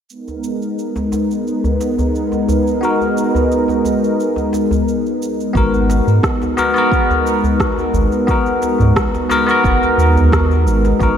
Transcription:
0.10 G#3 B3 D#4 A#4, cabasa
0.28 djembe tone, cabasa
0.44 cabasa
0.62 cabasa
0.79 cabasa
0.96 djembe slap, djembe tone, cabasa
1.12 djembe tone, cabasa
1.31 cabasa
1.47 cabasa
1.64 djembe bass, cabasa
1.81 djembe slap, cabasa
1.99 djembe bass, cabasa
2.15 cabasa
2.32 djembe tone, cabasa
2.49 djembe bass, cabasa
2.67 cabasa
2.81 B3 F#4 A#4, cabasa
3.01 djembe tone, cabasa
3.17 cabasa
3.35 djembe bass, cabasa
3.52 cabasa
3.68 djembe slap, djembe tone, cabasa
3.85 djembe tone, cabasa
4.04 cabasa
4.20 cabasa
4.36 djembe tone, cabasa
4.53 djembe slap, cabasa
4.71 djembe slap, djembe bass, cabasa
4.88 cabasa
5.06 cabasa
5.22 cabasa
5.40 cabasa
5.53 G#1 G#3 B3 D#4 F#4 A#4, kick, cabasa
5.74 djembe tone, cabasa
5.90 djembe slap, cabasa
6.07 G#2, cabasa
6.23 kick, cross-stick, cabasa
6.42 djembe slap, djembe tone, cabasa
6.57 B3 F#4 A#4, djembe tone, cabasa
6.74 B3 F#4, cabasa
6.78 A#4
6.92 kick, cabasa
7.10 djembe bass, cabasa
7.27 cabasa
7.44 djembe bass, cabasa
7.60 kick, cross-stick, cabasa
7.77 djembe tone, cabasa
7.94 G#1, djembe bass, cabasa
8.12 cabasa
8.27 B3 F#4 A#4, kick, cabasa
8.46 djembe tone, cabasa
8.62 djembe slap, cabasa
8.80 G#2, djembe bass, cabasa
8.96 kick, cross-stick, cabasa
9.14 djembe slap, djembe tone, cabasa
9.29 B3 F#4 A#4, djembe tone, cabasa
9.46 B3 F#4, cabasa
9.51 A#4
9.64 F#1, kick, cabasa
9.83 djembe tone, cabasa
9.98 D#2, cabasa
10.16 djembe bass, cabasa
10.32 kick, cross-stick, cabasa
10.51 cabasa
10.66 G#1, cabasa
10.85 djembe slap, cabasa
10.99 G#1 B3 F#4 A#4, kick, cabasa

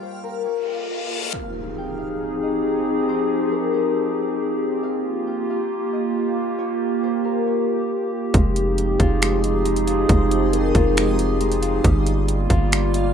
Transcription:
Already playing: G3 A#3 F4 D#5 F5
0.03 C5
0.24 A#4
0.45 C#5, reverse cymbal
1.33 F3 C4 D#4 G4 G#4 F5, impact
1.78 G5
1.99 F5
2.43 D#5
3.09 C5
3.52 A#4
3.74 C5
4.83 A#3 F4 G4 F5
5.27 G5
5.50 F5
5.93 D#5
6.58 C#5
7.03 C5
7.24 A#4
7.46 C#5
8.34 F1 F3 G#3 C4 D#4 F4 G#4 D#5 F5, kick, closed hi-hat
8.56 closed hi-hat
8.78 G5, closed hi-hat
8.99 F1 F4 F5, kick, closed hi-hat
9.22 G#3, finger snap, closed hi-hat
9.43 D#5, closed hi-hat
9.65 G#3, closed hi-hat
9.76 closed hi-hat
9.87 F4, closed hi-hat
10.09 F1 G#3 C5, kick, closed hi-hat
10.31 closed hi-hat
10.52 A#4, closed hi-hat
10.74 F1 F4 C5, kick, closed hi-hat
10.97 G#3, finger snap, closed hi-hat
11.19 closed hi-hat
11.41 G#3, closed hi-hat
11.52 closed hi-hat
11.62 F4, closed hi-hat
11.84 G1 G3 A#3 F4 G4 F5, kick, closed hi-hat
12.07 closed hi-hat
12.28 G5, closed hi-hat
12.50 G1 F4 F5, kick, closed hi-hat
12.72 G3, finger snap, closed hi-hat
12.94 D#5, closed hi-hat

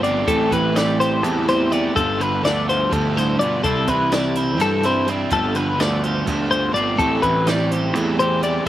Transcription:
Already playing: G2 D3 A3
0.02 G1 D3 F3 B3 C4 D5, closed hi-hat
0.06 F4
0.25 A1 A2 E3 A3 C4 E4 G4 A4, kick, closed hi-hat
0.51 A1 E3 A3 C4 E4 B4, kick, closed hi-hat
0.73 E3 G3 A3 C4 E4 D5, closed hi-hat
0.77 snare
1.00 G4 C5, snare, closed hi-hat
1.21 E2 A2 E3 A3 C4 A4, closed hi-hat
1.25 E2 E4
1.46 A3 C4 E4 G4 C5, snare, closed hi-hat
1.69 E3 A3 B3 C4 E4 D5, closed hi-hat
1.94 G1 G2 D3 F3 B3 F4 A4, kick, closed hi-hat
2.18 D3 F3 B3 F4 B4, closed hi-hat
2.41 D2 D3 F3 B3 F4 D5, closed hi-hat
2.45 A3, snare
2.69 F4 C5, snare, closed hi-hat
2.89 D2 G2 D3 F3 B3 F4 A4, kick, closed hi-hat
3.13 A2 F3 B3 F4 C5
3.18 snare, closed hi-hat
3.38 G2 D3 F3 B3 F4 D5, closed hi-hat
3.42 B2
3.62 C2 C3 G3 C4 E4 A4, kick, closed hi-hat
3.66 E4
3.87 C2 G3 C4 E4 B4, kick, closed hi-hat
3.91 E3
4.11 C3 G3 C4 E4 D5, snare, closed hi-hat
4.35 E4 C5, snare, closed hi-hat
4.57 G2 C3 G3 C4 E4, snare, closed hi-hat
4.62 A4
4.82 G3 C4 E4 C5, snare, closed hi-hat
5.05 C3 G3 C4, closed hi-hat
5.09 E4 D5
5.30 G1 G2 D3 F3 B3 F4 A4, kick, closed hi-hat
5.54 D3 F3 B3 F4 B4, closed hi-hat
5.76 D2 D3 F3 A3 B3 D5, closed hi-hat
5.80 F4, snare
6.04 F4 C5, closed hi-hat
6.25 D2 G2 D3 F3 B3 F4 A4, kick, snare, closed hi-hat
6.48 F3 B3 F4 C5
6.52 closed hi-hat
6.72 G1 D3 F3 B3 F4 D5, closed hi-hat
6.77 C4
6.95 A1 A2 E3 A3 C4 E4 A4, closed hi-hat
6.99 A2 G4, kick
7.20 A1 E3 A3 C4 E4 B4, kick, closed hi-hat
7.45 E3 G3 A3 C4 E4 D5, snare, closed hi-hat
7.71 G4 C5, closed hi-hat
7.93 E2 A2 E3 A3 C4 E4 A4, closed hi-hat
8.17 A3 C4 E4 C5, closed hi-hat
8.22 G4
8.40 E3 A3 C4 E4 D5, closed hi-hat
8.64 C3

